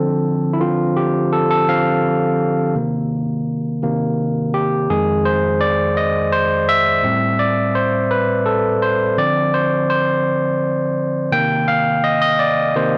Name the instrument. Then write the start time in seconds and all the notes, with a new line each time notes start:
tine electric piano
Already playing: D3 F3 C4 A4
0.53 E4
0.60 D3 F3 C4 F4
0.97 G4
1.33 A4
1.51 A4
1.68 D3 F3 C4 F5
2.75 C3 D#3 A#3
3.83 C3 D#3 A#3
4.54 G4
4.90 F2 D#3 G#3 G#4
5.25 C5
5.61 D5
5.97 D#5
6.32 C5
6.69 E5
7.03 A2 G3 C4
7.39 D5
7.75 C5
8.11 B4
8.46 A4
8.82 C5
9.17 D3 F3 C4 D5
9.54 C5
9.90 C5
11.32 C3 D#3 A#3 G5
11.68 F5
12.04 D#5
12.22 D#5
12.39 D5
12.76 C3 D#3 A#3 C5